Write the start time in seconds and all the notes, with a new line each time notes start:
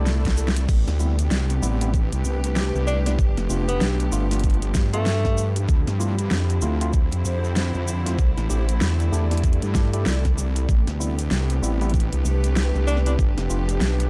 Already playing: C2 D3 A3 C4 E4 A4 D5, swell
0.06 snare, shaker
0.25 kick, snare, closed hi-hat, shaker
0.37 shaker
0.48 snare
0.56 closed hi-hat, shaker
0.69 A1 C3 B3 D4 G4, kick, crash, shaker
0.87 D2, snare, closed hi-hat, shaker
0.97 G3 B3 C4 E4 G4, shaker
1.19 closed hi-hat, shaker
1.31 C2, snare, shaker
1.38 B4
1.50 closed hi-hat, shaker
1.62 A1 G3 B3 C4 E4, shaker
1.81 G3 B3 C4 E4, closed hi-hat, shaker
1.94 kick, shaker
2.12 C2, closed hi-hat, shaker
2.25 C2, shaker
2.44 closed hi-hat, shaker
2.56 snare, shaker
2.75 C2, shaker
2.87 D4, shaker
3.06 G3 B3 C4 D4 E4, snare, closed hi-hat, shaker
3.18 G1 F3 B3, kick, shaker
3.37 F1, snare, closed hi-hat, shaker
3.50 F1 A3 B3 D4 F4, shaker
3.69 B3, closed hi-hat, shaker
3.81 B1, snare, shaker
4.00 closed hi-hat, shaker
4.12 G1 A3 B3 D4 F4, shaker
4.31 A3 B3 D4 F4, snare, closed hi-hat, shaker
4.33 closed hi-hat
4.39 closed hi-hat
4.44 kick, closed hi-hat, shaker
4.50 closed hi-hat
4.54 closed hi-hat
4.62 closed hi-hat, shaker
4.74 G2, kick, snare, shaker
4.93 A3 B3 D4 F4, closed hi-hat, shaker
5.06 snare, shaker
5.25 kick, snare, shaker
5.38 shaker
5.56 closed hi-hat, shaker
5.69 D2 D3 C4 E4, kick, shaker
5.87 G2, snare, closed hi-hat, shaker
6.00 A3 C4 E4 F4, shaker
6.19 closed hi-hat, shaker
6.31 F2, snare, shaker
6.50 C5, closed hi-hat, shaker
6.61 D2 A3 C4 E4 F4, shaker
6.81 A3 C4 E4 F4, closed hi-hat, shaker
6.93 kick, shaker
7.12 F2, closed hi-hat, shaker
7.25 F2, shaker
7.44 shaker
7.56 snare, shaker
7.74 F2, shaker
7.88 shaker
8.06 A3 C4 E4 F4, snare, closed hi-hat, shaker
8.18 C2 A3 E4, kick, shaker
8.37 A1, snare, closed hi-hat, shaker
8.43 D5
8.50 A1 A3 D4 E4 G4, shaker
8.59 A4
8.69 closed hi-hat, shaker
8.81 E2, snare, shaker
9.00 closed hi-hat, shaker
9.12 E2 A3 D4 E4 G4, shaker
9.31 A3 D4 E4 G4, snare, closed hi-hat, shaker
9.37 closed hi-hat
9.44 kick, closed hi-hat, shaker
9.53 closed hi-hat
9.62 G2, closed hi-hat, shaker
9.75 A3 D4 E4 G4, kick, snare, shaker
9.93 A3 D4 E4 G4, closed hi-hat, shaker
10.06 C2, snare, shaker
10.25 kick, snare, closed hi-hat, shaker
10.38 C2, shaker
10.56 closed hi-hat, shaker
10.69 A1 C3 A3 B3 D4 G4, kick, shaker
10.85 D2 G4, snare, closed hi-hat, shaker
11.00 G3 B3 C4 E4, shaker
11.19 closed hi-hat, shaker
11.31 C2, snare, shaker
11.38 B4
11.50 closed hi-hat, shaker
11.62 A1 G3 B3 C4 E4, shaker
11.81 G3 B3 C4 E4, closed hi-hat, shaker
11.90 closed hi-hat
11.94 kick, shaker
12.00 closed hi-hat
12.13 C2, closed hi-hat, shaker
12.25 C2, shaker
12.44 closed hi-hat, shaker
12.56 snare, shaker
12.75 C2, shaker
12.87 D4, shaker
12.97 snare
13.06 G3 B3 C4 D4 E4, closed hi-hat, shaker
13.19 G1 F3 B3, kick, shaker
13.38 F1, snare, closed hi-hat, shaker
13.50 F1 A3 B3 D4 F4, shaker
13.69 closed hi-hat, shaker
13.81 B1, snare, shaker
14.00 closed hi-hat, shaker